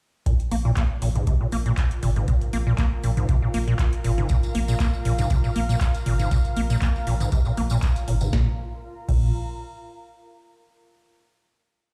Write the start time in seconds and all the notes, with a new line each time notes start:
0.26 A#2 F4, kick, closed hi-hat
0.40 closed hi-hat
0.47 A#4
0.51 A#1 A#3, open hi-hat
0.65 A#2
0.77 A#3 F5, kick, clap, closed hi-hat
0.91 A#5
1.02 A#1 A#2, open hi-hat
1.15 G#2, closed hi-hat, mid tom
1.27 C3, kick, closed hi-hat
1.41 A#2
1.52 A#1 A#3, open hi-hat
1.66 A#2, closed hi-hat
1.77 kick, clap, closed hi-hat
1.91 closed hi-hat
2.03 G#1 A#2, open hi-hat, mid tom
2.16 G#2, closed hi-hat, mid tom
2.28 A#2, kick, closed hi-hat
2.41 closed hi-hat
2.53 A#1 A#3, open hi-hat
2.67 A#2
2.78 A#3, kick, clap, closed hi-hat
3.04 A#1 A#2, open hi-hat
3.17 G#2, closed hi-hat, mid tom
3.29 C3, kick, closed hi-hat
3.42 A#2
3.54 A#1 A#3, open hi-hat
3.68 A#2, closed hi-hat
3.79 kick, clap, closed hi-hat
3.93 closed hi-hat
4.04 G#1 A#2, open hi-hat
4.18 G#2, closed hi-hat, mid tom
4.29 A#2 F5, kick, closed hi-hat, tambourine
4.43 closed hi-hat, tambourine
4.55 A#1 A#3, open hi-hat
4.68 A#2, tambourine
4.80 A#3, kick, clap, closed hi-hat, tambourine
4.93 tambourine
5.05 A#1 A#2, open hi-hat
5.18 G#2, closed hi-hat, mid tom, tambourine
5.30 C3, kick, closed hi-hat, tambourine
5.44 A#2, tambourine
5.56 A#1 A#3, open hi-hat
5.69 A#2, closed hi-hat, tambourine
5.81 kick, clap, closed hi-hat, tambourine
5.94 closed hi-hat, tambourine
6.06 G#1 A#2, open hi-hat, mid tom
6.19 G#2, closed hi-hat, mid tom, tambourine
6.31 A#2, kick, closed hi-hat, tambourine
6.45 closed hi-hat, tambourine
6.56 A#1 A#3, open hi-hat
6.70 A#2, closed hi-hat, tambourine
6.82 A#3, kick, clap, closed hi-hat, tambourine
6.96 tambourine
7.07 A#1 A#2, open hi-hat
7.20 G#2, closed hi-hat, mid tom, tambourine
7.32 C3, kick, closed hi-hat, tambourine
7.45 A#2, tambourine
7.57 A#1 A#3, open hi-hat
7.70 A#2, closed hi-hat, tambourine
7.82 kick, clap, closed hi-hat, tambourine
7.96 closed hi-hat, tambourine
8.08 G#1 A#2, open hi-hat
8.21 G#2, closed hi-hat, mid tom, tambourine
8.33 A#1 A#2 F4, kick, snare
8.41 A#4
8.49 F5
8.56 A#5
9.09 A#1 A#2, kick, crash